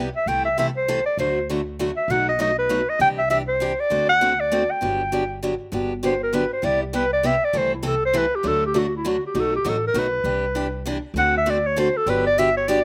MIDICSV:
0, 0, Header, 1, 4, 480
1, 0, Start_track
1, 0, Key_signature, 1, "major"
1, 0, Tempo, 302419
1, 433, Time_signature, 3, 2, 24, 8
1, 20381, End_track
2, 0, Start_track
2, 0, Title_t, "Clarinet"
2, 0, Program_c, 0, 71
2, 258, Note_on_c, 0, 76, 93
2, 442, Note_on_c, 0, 79, 109
2, 466, Note_off_c, 0, 76, 0
2, 706, Note_off_c, 0, 79, 0
2, 716, Note_on_c, 0, 76, 89
2, 901, Note_off_c, 0, 76, 0
2, 940, Note_on_c, 0, 76, 84
2, 1061, Note_off_c, 0, 76, 0
2, 1218, Note_on_c, 0, 72, 86
2, 1654, Note_off_c, 0, 72, 0
2, 1674, Note_on_c, 0, 74, 82
2, 1860, Note_off_c, 0, 74, 0
2, 1902, Note_on_c, 0, 72, 80
2, 2336, Note_off_c, 0, 72, 0
2, 3122, Note_on_c, 0, 76, 83
2, 3340, Note_on_c, 0, 78, 98
2, 3364, Note_off_c, 0, 76, 0
2, 3610, Note_off_c, 0, 78, 0
2, 3628, Note_on_c, 0, 75, 81
2, 3799, Note_off_c, 0, 75, 0
2, 3828, Note_on_c, 0, 75, 91
2, 4075, Note_off_c, 0, 75, 0
2, 4105, Note_on_c, 0, 71, 88
2, 4590, Note_on_c, 0, 75, 83
2, 4614, Note_off_c, 0, 71, 0
2, 4773, Note_off_c, 0, 75, 0
2, 4781, Note_on_c, 0, 79, 104
2, 4902, Note_off_c, 0, 79, 0
2, 5052, Note_on_c, 0, 76, 91
2, 5231, Note_off_c, 0, 76, 0
2, 5243, Note_on_c, 0, 76, 90
2, 5368, Note_off_c, 0, 76, 0
2, 5522, Note_on_c, 0, 72, 86
2, 6035, Note_on_c, 0, 74, 88
2, 6059, Note_off_c, 0, 72, 0
2, 6485, Note_off_c, 0, 74, 0
2, 6494, Note_on_c, 0, 78, 99
2, 6984, Note_on_c, 0, 74, 89
2, 7008, Note_off_c, 0, 78, 0
2, 7473, Note_on_c, 0, 79, 86
2, 7496, Note_off_c, 0, 74, 0
2, 8615, Note_off_c, 0, 79, 0
2, 9609, Note_on_c, 0, 72, 79
2, 9847, Note_off_c, 0, 72, 0
2, 9887, Note_on_c, 0, 70, 82
2, 10066, Note_on_c, 0, 71, 74
2, 10090, Note_off_c, 0, 70, 0
2, 10334, Note_off_c, 0, 71, 0
2, 10362, Note_on_c, 0, 72, 83
2, 10552, Note_on_c, 0, 74, 95
2, 10576, Note_off_c, 0, 72, 0
2, 10817, Note_off_c, 0, 74, 0
2, 10838, Note_on_c, 0, 67, 50
2, 11030, Note_on_c, 0, 71, 83
2, 11054, Note_off_c, 0, 67, 0
2, 11295, Note_off_c, 0, 71, 0
2, 11316, Note_on_c, 0, 74, 89
2, 11522, Note_on_c, 0, 76, 90
2, 11546, Note_off_c, 0, 74, 0
2, 11817, Note_on_c, 0, 74, 86
2, 11840, Note_off_c, 0, 76, 0
2, 12023, Note_on_c, 0, 72, 90
2, 12047, Note_off_c, 0, 74, 0
2, 12272, Note_off_c, 0, 72, 0
2, 12293, Note_on_c, 0, 64, 52
2, 12490, Note_on_c, 0, 69, 80
2, 12514, Note_off_c, 0, 64, 0
2, 12745, Note_off_c, 0, 69, 0
2, 12786, Note_on_c, 0, 72, 96
2, 12976, Note_on_c, 0, 71, 79
2, 13000, Note_off_c, 0, 72, 0
2, 13257, Note_on_c, 0, 67, 84
2, 13281, Note_off_c, 0, 71, 0
2, 13454, Note_on_c, 0, 69, 95
2, 13478, Note_off_c, 0, 67, 0
2, 13707, Note_off_c, 0, 69, 0
2, 13748, Note_on_c, 0, 67, 79
2, 13956, Note_on_c, 0, 66, 78
2, 13980, Note_off_c, 0, 67, 0
2, 14198, Note_off_c, 0, 66, 0
2, 14229, Note_on_c, 0, 64, 67
2, 14415, Note_on_c, 0, 66, 70
2, 14439, Note_off_c, 0, 64, 0
2, 14667, Note_off_c, 0, 66, 0
2, 14708, Note_on_c, 0, 67, 75
2, 14925, Note_on_c, 0, 69, 89
2, 14949, Note_off_c, 0, 67, 0
2, 15162, Note_off_c, 0, 69, 0
2, 15174, Note_on_c, 0, 67, 82
2, 15385, Note_on_c, 0, 69, 78
2, 15409, Note_off_c, 0, 67, 0
2, 15632, Note_off_c, 0, 69, 0
2, 15668, Note_on_c, 0, 70, 87
2, 15855, Note_on_c, 0, 71, 82
2, 15879, Note_off_c, 0, 70, 0
2, 17264, Note_off_c, 0, 71, 0
2, 17755, Note_on_c, 0, 78, 97
2, 17997, Note_off_c, 0, 78, 0
2, 18051, Note_on_c, 0, 76, 91
2, 18252, Note_on_c, 0, 74, 83
2, 18276, Note_off_c, 0, 76, 0
2, 18510, Note_on_c, 0, 73, 89
2, 18534, Note_off_c, 0, 74, 0
2, 18712, Note_on_c, 0, 72, 80
2, 18736, Note_off_c, 0, 73, 0
2, 18994, Note_on_c, 0, 69, 91
2, 19017, Note_off_c, 0, 72, 0
2, 19196, Note_on_c, 0, 71, 86
2, 19220, Note_off_c, 0, 69, 0
2, 19455, Note_off_c, 0, 71, 0
2, 19466, Note_on_c, 0, 74, 100
2, 19659, Note_on_c, 0, 76, 106
2, 19683, Note_off_c, 0, 74, 0
2, 19926, Note_off_c, 0, 76, 0
2, 19948, Note_on_c, 0, 73, 87
2, 20129, Note_on_c, 0, 74, 97
2, 20152, Note_off_c, 0, 73, 0
2, 20381, Note_off_c, 0, 74, 0
2, 20381, End_track
3, 0, Start_track
3, 0, Title_t, "Steel-string acoustic guitar"
3, 0, Program_c, 1, 25
3, 436, Note_on_c, 1, 48, 64
3, 443, Note_on_c, 1, 52, 68
3, 446, Note_on_c, 1, 57, 77
3, 456, Note_on_c, 1, 64, 75
3, 459, Note_on_c, 1, 69, 73
3, 742, Note_off_c, 1, 48, 0
3, 746, Note_off_c, 1, 52, 0
3, 747, Note_off_c, 1, 57, 0
3, 752, Note_off_c, 1, 64, 0
3, 754, Note_off_c, 1, 69, 0
3, 914, Note_on_c, 1, 48, 86
3, 918, Note_on_c, 1, 52, 81
3, 925, Note_on_c, 1, 64, 91
3, 934, Note_on_c, 1, 57, 87
3, 940, Note_on_c, 1, 69, 98
3, 1082, Note_off_c, 1, 48, 0
3, 1084, Note_off_c, 1, 52, 0
3, 1088, Note_off_c, 1, 64, 0
3, 1092, Note_off_c, 1, 57, 0
3, 1095, Note_off_c, 1, 69, 0
3, 1403, Note_on_c, 1, 48, 78
3, 1403, Note_on_c, 1, 52, 86
3, 1406, Note_on_c, 1, 64, 92
3, 1407, Note_on_c, 1, 57, 92
3, 1417, Note_on_c, 1, 69, 102
3, 1567, Note_off_c, 1, 48, 0
3, 1567, Note_off_c, 1, 52, 0
3, 1569, Note_off_c, 1, 57, 0
3, 1569, Note_off_c, 1, 64, 0
3, 1574, Note_off_c, 1, 69, 0
3, 1880, Note_on_c, 1, 50, 68
3, 1891, Note_on_c, 1, 62, 69
3, 1892, Note_on_c, 1, 54, 71
3, 1892, Note_on_c, 1, 57, 65
3, 1899, Note_on_c, 1, 66, 78
3, 2185, Note_off_c, 1, 50, 0
3, 2190, Note_off_c, 1, 57, 0
3, 2190, Note_off_c, 1, 62, 0
3, 2191, Note_off_c, 1, 54, 0
3, 2194, Note_off_c, 1, 66, 0
3, 2373, Note_on_c, 1, 54, 84
3, 2380, Note_on_c, 1, 50, 85
3, 2384, Note_on_c, 1, 57, 80
3, 2390, Note_on_c, 1, 62, 88
3, 2390, Note_on_c, 1, 66, 88
3, 2532, Note_off_c, 1, 54, 0
3, 2536, Note_off_c, 1, 50, 0
3, 2538, Note_off_c, 1, 57, 0
3, 2541, Note_off_c, 1, 62, 0
3, 2541, Note_off_c, 1, 66, 0
3, 2846, Note_on_c, 1, 54, 81
3, 2848, Note_on_c, 1, 50, 83
3, 2856, Note_on_c, 1, 57, 91
3, 2862, Note_on_c, 1, 62, 88
3, 2866, Note_on_c, 1, 66, 88
3, 3009, Note_off_c, 1, 54, 0
3, 3010, Note_off_c, 1, 50, 0
3, 3014, Note_off_c, 1, 57, 0
3, 3017, Note_off_c, 1, 62, 0
3, 3019, Note_off_c, 1, 66, 0
3, 3330, Note_on_c, 1, 47, 64
3, 3335, Note_on_c, 1, 54, 72
3, 3338, Note_on_c, 1, 57, 64
3, 3338, Note_on_c, 1, 63, 77
3, 3351, Note_on_c, 1, 66, 69
3, 3630, Note_off_c, 1, 47, 0
3, 3633, Note_off_c, 1, 54, 0
3, 3634, Note_off_c, 1, 57, 0
3, 3634, Note_off_c, 1, 63, 0
3, 3641, Note_off_c, 1, 66, 0
3, 3791, Note_on_c, 1, 54, 82
3, 3801, Note_on_c, 1, 47, 78
3, 3805, Note_on_c, 1, 57, 94
3, 3807, Note_on_c, 1, 63, 85
3, 3813, Note_on_c, 1, 66, 88
3, 3962, Note_off_c, 1, 54, 0
3, 3967, Note_off_c, 1, 47, 0
3, 3969, Note_off_c, 1, 57, 0
3, 3970, Note_off_c, 1, 63, 0
3, 3973, Note_off_c, 1, 66, 0
3, 4275, Note_on_c, 1, 47, 83
3, 4282, Note_on_c, 1, 57, 97
3, 4286, Note_on_c, 1, 54, 91
3, 4289, Note_on_c, 1, 63, 89
3, 4292, Note_on_c, 1, 66, 87
3, 4444, Note_off_c, 1, 47, 0
3, 4448, Note_off_c, 1, 57, 0
3, 4449, Note_off_c, 1, 54, 0
3, 4451, Note_off_c, 1, 63, 0
3, 4453, Note_off_c, 1, 66, 0
3, 4756, Note_on_c, 1, 52, 72
3, 4761, Note_on_c, 1, 48, 67
3, 4771, Note_on_c, 1, 62, 74
3, 4773, Note_on_c, 1, 67, 75
3, 5063, Note_off_c, 1, 52, 0
3, 5066, Note_off_c, 1, 48, 0
3, 5071, Note_off_c, 1, 62, 0
3, 5072, Note_off_c, 1, 67, 0
3, 5237, Note_on_c, 1, 48, 82
3, 5242, Note_on_c, 1, 52, 83
3, 5247, Note_on_c, 1, 62, 82
3, 5251, Note_on_c, 1, 67, 95
3, 5405, Note_off_c, 1, 48, 0
3, 5408, Note_off_c, 1, 52, 0
3, 5410, Note_off_c, 1, 62, 0
3, 5412, Note_off_c, 1, 67, 0
3, 5717, Note_on_c, 1, 48, 96
3, 5732, Note_on_c, 1, 52, 88
3, 5742, Note_on_c, 1, 62, 100
3, 5745, Note_on_c, 1, 67, 94
3, 5886, Note_off_c, 1, 48, 0
3, 5893, Note_off_c, 1, 52, 0
3, 5898, Note_off_c, 1, 62, 0
3, 5900, Note_off_c, 1, 67, 0
3, 6191, Note_on_c, 1, 50, 67
3, 6196, Note_on_c, 1, 57, 69
3, 6206, Note_on_c, 1, 66, 66
3, 6208, Note_on_c, 1, 60, 65
3, 6209, Note_on_c, 1, 69, 81
3, 6501, Note_off_c, 1, 50, 0
3, 6504, Note_off_c, 1, 57, 0
3, 6509, Note_off_c, 1, 66, 0
3, 6510, Note_off_c, 1, 60, 0
3, 6511, Note_off_c, 1, 69, 0
3, 6684, Note_on_c, 1, 50, 87
3, 6685, Note_on_c, 1, 57, 88
3, 6688, Note_on_c, 1, 60, 92
3, 6701, Note_on_c, 1, 66, 84
3, 6702, Note_on_c, 1, 69, 93
3, 6849, Note_off_c, 1, 50, 0
3, 6849, Note_off_c, 1, 57, 0
3, 6851, Note_off_c, 1, 60, 0
3, 6858, Note_off_c, 1, 66, 0
3, 6858, Note_off_c, 1, 69, 0
3, 7166, Note_on_c, 1, 57, 91
3, 7168, Note_on_c, 1, 50, 84
3, 7173, Note_on_c, 1, 66, 92
3, 7176, Note_on_c, 1, 60, 93
3, 7184, Note_on_c, 1, 69, 99
3, 7330, Note_off_c, 1, 57, 0
3, 7331, Note_off_c, 1, 50, 0
3, 7334, Note_off_c, 1, 66, 0
3, 7335, Note_off_c, 1, 60, 0
3, 7339, Note_off_c, 1, 69, 0
3, 7632, Note_on_c, 1, 50, 65
3, 7648, Note_on_c, 1, 54, 65
3, 7649, Note_on_c, 1, 59, 70
3, 7657, Note_on_c, 1, 62, 76
3, 7659, Note_on_c, 1, 67, 78
3, 7942, Note_off_c, 1, 50, 0
3, 7950, Note_off_c, 1, 54, 0
3, 7950, Note_off_c, 1, 59, 0
3, 7954, Note_off_c, 1, 62, 0
3, 7955, Note_off_c, 1, 67, 0
3, 8126, Note_on_c, 1, 50, 82
3, 8130, Note_on_c, 1, 54, 84
3, 8131, Note_on_c, 1, 59, 86
3, 8143, Note_on_c, 1, 62, 91
3, 8147, Note_on_c, 1, 67, 93
3, 8290, Note_off_c, 1, 50, 0
3, 8292, Note_off_c, 1, 54, 0
3, 8292, Note_off_c, 1, 59, 0
3, 8299, Note_off_c, 1, 62, 0
3, 8301, Note_off_c, 1, 67, 0
3, 8612, Note_on_c, 1, 50, 86
3, 8616, Note_on_c, 1, 54, 85
3, 8624, Note_on_c, 1, 62, 88
3, 8630, Note_on_c, 1, 67, 98
3, 8631, Note_on_c, 1, 59, 86
3, 8773, Note_off_c, 1, 50, 0
3, 8775, Note_off_c, 1, 54, 0
3, 8779, Note_off_c, 1, 62, 0
3, 8782, Note_off_c, 1, 67, 0
3, 8783, Note_off_c, 1, 59, 0
3, 9074, Note_on_c, 1, 50, 67
3, 9088, Note_on_c, 1, 54, 69
3, 9093, Note_on_c, 1, 62, 68
3, 9097, Note_on_c, 1, 59, 70
3, 9102, Note_on_c, 1, 67, 78
3, 9383, Note_off_c, 1, 50, 0
3, 9390, Note_off_c, 1, 54, 0
3, 9392, Note_off_c, 1, 62, 0
3, 9394, Note_off_c, 1, 59, 0
3, 9397, Note_off_c, 1, 67, 0
3, 9567, Note_on_c, 1, 54, 83
3, 9573, Note_on_c, 1, 62, 88
3, 9574, Note_on_c, 1, 50, 84
3, 9583, Note_on_c, 1, 67, 84
3, 9584, Note_on_c, 1, 59, 94
3, 9731, Note_off_c, 1, 54, 0
3, 9734, Note_off_c, 1, 50, 0
3, 9734, Note_off_c, 1, 62, 0
3, 9739, Note_off_c, 1, 67, 0
3, 9740, Note_off_c, 1, 59, 0
3, 10041, Note_on_c, 1, 50, 85
3, 10050, Note_on_c, 1, 54, 92
3, 10054, Note_on_c, 1, 59, 89
3, 10060, Note_on_c, 1, 67, 92
3, 10062, Note_on_c, 1, 62, 100
3, 10208, Note_off_c, 1, 50, 0
3, 10212, Note_off_c, 1, 54, 0
3, 10214, Note_off_c, 1, 59, 0
3, 10217, Note_off_c, 1, 67, 0
3, 10218, Note_off_c, 1, 62, 0
3, 10508, Note_on_c, 1, 48, 64
3, 10522, Note_on_c, 1, 55, 72
3, 10527, Note_on_c, 1, 64, 75
3, 10532, Note_on_c, 1, 59, 69
3, 10533, Note_on_c, 1, 67, 73
3, 10820, Note_off_c, 1, 48, 0
3, 10827, Note_off_c, 1, 55, 0
3, 10830, Note_off_c, 1, 64, 0
3, 10832, Note_off_c, 1, 59, 0
3, 10833, Note_off_c, 1, 67, 0
3, 11001, Note_on_c, 1, 48, 84
3, 11003, Note_on_c, 1, 55, 87
3, 11006, Note_on_c, 1, 64, 92
3, 11010, Note_on_c, 1, 59, 92
3, 11016, Note_on_c, 1, 67, 96
3, 11168, Note_off_c, 1, 48, 0
3, 11169, Note_off_c, 1, 55, 0
3, 11170, Note_off_c, 1, 64, 0
3, 11172, Note_off_c, 1, 59, 0
3, 11175, Note_off_c, 1, 67, 0
3, 11480, Note_on_c, 1, 48, 88
3, 11484, Note_on_c, 1, 55, 96
3, 11493, Note_on_c, 1, 59, 100
3, 11494, Note_on_c, 1, 64, 91
3, 11509, Note_on_c, 1, 67, 98
3, 11647, Note_off_c, 1, 48, 0
3, 11649, Note_off_c, 1, 55, 0
3, 11654, Note_off_c, 1, 59, 0
3, 11654, Note_off_c, 1, 64, 0
3, 11662, Note_off_c, 1, 67, 0
3, 11954, Note_on_c, 1, 48, 62
3, 11958, Note_on_c, 1, 52, 74
3, 11963, Note_on_c, 1, 57, 73
3, 11971, Note_on_c, 1, 64, 80
3, 11976, Note_on_c, 1, 69, 70
3, 12263, Note_off_c, 1, 48, 0
3, 12265, Note_off_c, 1, 52, 0
3, 12267, Note_off_c, 1, 57, 0
3, 12271, Note_off_c, 1, 64, 0
3, 12274, Note_off_c, 1, 69, 0
3, 12421, Note_on_c, 1, 48, 86
3, 12428, Note_on_c, 1, 52, 86
3, 12428, Note_on_c, 1, 69, 95
3, 12430, Note_on_c, 1, 57, 81
3, 12430, Note_on_c, 1, 64, 103
3, 12597, Note_off_c, 1, 48, 0
3, 12601, Note_off_c, 1, 52, 0
3, 12601, Note_off_c, 1, 69, 0
3, 12602, Note_off_c, 1, 57, 0
3, 12602, Note_off_c, 1, 64, 0
3, 12911, Note_on_c, 1, 48, 93
3, 12912, Note_on_c, 1, 52, 101
3, 12923, Note_on_c, 1, 69, 106
3, 12925, Note_on_c, 1, 57, 93
3, 12925, Note_on_c, 1, 64, 91
3, 13082, Note_off_c, 1, 48, 0
3, 13083, Note_off_c, 1, 52, 0
3, 13089, Note_off_c, 1, 57, 0
3, 13089, Note_off_c, 1, 64, 0
3, 13089, Note_off_c, 1, 69, 0
3, 13383, Note_on_c, 1, 50, 65
3, 13390, Note_on_c, 1, 54, 67
3, 13393, Note_on_c, 1, 57, 73
3, 13397, Note_on_c, 1, 66, 73
3, 13399, Note_on_c, 1, 62, 72
3, 13697, Note_off_c, 1, 50, 0
3, 13700, Note_off_c, 1, 54, 0
3, 13702, Note_off_c, 1, 57, 0
3, 13704, Note_off_c, 1, 66, 0
3, 13705, Note_off_c, 1, 62, 0
3, 13875, Note_on_c, 1, 50, 81
3, 13875, Note_on_c, 1, 54, 90
3, 13877, Note_on_c, 1, 57, 91
3, 13889, Note_on_c, 1, 62, 88
3, 13899, Note_on_c, 1, 66, 93
3, 14044, Note_off_c, 1, 50, 0
3, 14044, Note_off_c, 1, 54, 0
3, 14045, Note_off_c, 1, 57, 0
3, 14051, Note_off_c, 1, 62, 0
3, 14056, Note_off_c, 1, 66, 0
3, 14357, Note_on_c, 1, 50, 91
3, 14364, Note_on_c, 1, 54, 95
3, 14374, Note_on_c, 1, 57, 93
3, 14375, Note_on_c, 1, 62, 88
3, 14376, Note_on_c, 1, 66, 93
3, 14525, Note_off_c, 1, 50, 0
3, 14529, Note_off_c, 1, 54, 0
3, 14533, Note_off_c, 1, 57, 0
3, 14534, Note_off_c, 1, 62, 0
3, 14534, Note_off_c, 1, 66, 0
3, 14834, Note_on_c, 1, 54, 72
3, 14840, Note_on_c, 1, 57, 77
3, 14841, Note_on_c, 1, 63, 80
3, 14842, Note_on_c, 1, 47, 65
3, 14847, Note_on_c, 1, 66, 71
3, 15142, Note_off_c, 1, 54, 0
3, 15145, Note_off_c, 1, 57, 0
3, 15145, Note_off_c, 1, 63, 0
3, 15146, Note_off_c, 1, 47, 0
3, 15148, Note_off_c, 1, 66, 0
3, 15308, Note_on_c, 1, 47, 85
3, 15315, Note_on_c, 1, 54, 89
3, 15317, Note_on_c, 1, 57, 85
3, 15325, Note_on_c, 1, 63, 102
3, 15334, Note_on_c, 1, 66, 91
3, 15480, Note_off_c, 1, 47, 0
3, 15484, Note_off_c, 1, 54, 0
3, 15484, Note_off_c, 1, 57, 0
3, 15489, Note_off_c, 1, 63, 0
3, 15493, Note_off_c, 1, 66, 0
3, 15782, Note_on_c, 1, 47, 82
3, 15784, Note_on_c, 1, 54, 90
3, 15792, Note_on_c, 1, 57, 85
3, 15798, Note_on_c, 1, 63, 100
3, 15802, Note_on_c, 1, 66, 93
3, 15957, Note_off_c, 1, 47, 0
3, 15958, Note_off_c, 1, 54, 0
3, 15962, Note_off_c, 1, 57, 0
3, 15965, Note_off_c, 1, 63, 0
3, 15967, Note_off_c, 1, 66, 0
3, 16258, Note_on_c, 1, 48, 66
3, 16261, Note_on_c, 1, 52, 64
3, 16270, Note_on_c, 1, 67, 79
3, 16272, Note_on_c, 1, 62, 72
3, 16573, Note_off_c, 1, 48, 0
3, 16575, Note_off_c, 1, 52, 0
3, 16579, Note_off_c, 1, 67, 0
3, 16580, Note_off_c, 1, 62, 0
3, 16744, Note_on_c, 1, 48, 78
3, 16746, Note_on_c, 1, 52, 86
3, 16748, Note_on_c, 1, 62, 91
3, 16765, Note_on_c, 1, 67, 97
3, 16917, Note_off_c, 1, 48, 0
3, 16918, Note_off_c, 1, 52, 0
3, 16919, Note_off_c, 1, 62, 0
3, 16928, Note_off_c, 1, 67, 0
3, 17230, Note_on_c, 1, 48, 89
3, 17245, Note_on_c, 1, 52, 101
3, 17248, Note_on_c, 1, 67, 95
3, 17254, Note_on_c, 1, 62, 96
3, 17400, Note_off_c, 1, 48, 0
3, 17407, Note_off_c, 1, 52, 0
3, 17409, Note_off_c, 1, 67, 0
3, 17412, Note_off_c, 1, 62, 0
3, 17712, Note_on_c, 1, 50, 74
3, 17716, Note_on_c, 1, 57, 69
3, 17726, Note_on_c, 1, 60, 73
3, 17730, Note_on_c, 1, 66, 73
3, 17734, Note_on_c, 1, 69, 71
3, 18019, Note_off_c, 1, 50, 0
3, 18021, Note_off_c, 1, 57, 0
3, 18026, Note_off_c, 1, 60, 0
3, 18028, Note_off_c, 1, 66, 0
3, 18030, Note_off_c, 1, 69, 0
3, 18188, Note_on_c, 1, 50, 89
3, 18190, Note_on_c, 1, 57, 85
3, 18194, Note_on_c, 1, 60, 93
3, 18195, Note_on_c, 1, 69, 100
3, 18205, Note_on_c, 1, 66, 92
3, 18358, Note_off_c, 1, 50, 0
3, 18359, Note_off_c, 1, 57, 0
3, 18361, Note_off_c, 1, 60, 0
3, 18362, Note_off_c, 1, 69, 0
3, 18367, Note_off_c, 1, 66, 0
3, 18672, Note_on_c, 1, 57, 92
3, 18677, Note_on_c, 1, 50, 86
3, 18685, Note_on_c, 1, 60, 92
3, 18691, Note_on_c, 1, 69, 108
3, 18694, Note_on_c, 1, 66, 98
3, 18840, Note_off_c, 1, 57, 0
3, 18843, Note_off_c, 1, 50, 0
3, 18847, Note_off_c, 1, 60, 0
3, 18850, Note_off_c, 1, 69, 0
3, 18851, Note_off_c, 1, 66, 0
3, 19151, Note_on_c, 1, 50, 70
3, 19154, Note_on_c, 1, 54, 77
3, 19166, Note_on_c, 1, 59, 73
3, 19168, Note_on_c, 1, 67, 82
3, 19169, Note_on_c, 1, 62, 76
3, 19458, Note_off_c, 1, 50, 0
3, 19459, Note_off_c, 1, 54, 0
3, 19466, Note_off_c, 1, 59, 0
3, 19467, Note_off_c, 1, 62, 0
3, 19467, Note_off_c, 1, 67, 0
3, 19648, Note_on_c, 1, 54, 86
3, 19656, Note_on_c, 1, 59, 87
3, 19659, Note_on_c, 1, 50, 95
3, 19669, Note_on_c, 1, 67, 108
3, 19673, Note_on_c, 1, 62, 96
3, 19808, Note_off_c, 1, 54, 0
3, 19812, Note_off_c, 1, 59, 0
3, 19813, Note_off_c, 1, 50, 0
3, 19818, Note_off_c, 1, 67, 0
3, 19820, Note_off_c, 1, 62, 0
3, 20127, Note_on_c, 1, 50, 94
3, 20131, Note_on_c, 1, 59, 102
3, 20137, Note_on_c, 1, 54, 97
3, 20138, Note_on_c, 1, 62, 107
3, 20146, Note_on_c, 1, 67, 109
3, 20287, Note_off_c, 1, 50, 0
3, 20289, Note_off_c, 1, 59, 0
3, 20292, Note_off_c, 1, 54, 0
3, 20292, Note_off_c, 1, 62, 0
3, 20296, Note_off_c, 1, 67, 0
3, 20381, End_track
4, 0, Start_track
4, 0, Title_t, "Upright bass"
4, 0, Program_c, 2, 32
4, 415, Note_on_c, 2, 36, 78
4, 1576, Note_off_c, 2, 36, 0
4, 1863, Note_on_c, 2, 38, 79
4, 3021, Note_off_c, 2, 38, 0
4, 3301, Note_on_c, 2, 35, 87
4, 4460, Note_off_c, 2, 35, 0
4, 4751, Note_on_c, 2, 36, 84
4, 5906, Note_off_c, 2, 36, 0
4, 6207, Note_on_c, 2, 38, 78
4, 7355, Note_off_c, 2, 38, 0
4, 7651, Note_on_c, 2, 31, 87
4, 8798, Note_off_c, 2, 31, 0
4, 9081, Note_on_c, 2, 31, 83
4, 10232, Note_off_c, 2, 31, 0
4, 10520, Note_on_c, 2, 36, 81
4, 11671, Note_off_c, 2, 36, 0
4, 11957, Note_on_c, 2, 36, 81
4, 13109, Note_off_c, 2, 36, 0
4, 13393, Note_on_c, 2, 38, 84
4, 14546, Note_off_c, 2, 38, 0
4, 14830, Note_on_c, 2, 35, 86
4, 15216, Note_off_c, 2, 35, 0
4, 15313, Note_on_c, 2, 33, 88
4, 15722, Note_off_c, 2, 33, 0
4, 15778, Note_on_c, 2, 35, 77
4, 16193, Note_off_c, 2, 35, 0
4, 16250, Note_on_c, 2, 36, 86
4, 17411, Note_off_c, 2, 36, 0
4, 17677, Note_on_c, 2, 38, 90
4, 18843, Note_off_c, 2, 38, 0
4, 19146, Note_on_c, 2, 31, 87
4, 20299, Note_off_c, 2, 31, 0
4, 20381, End_track
0, 0, End_of_file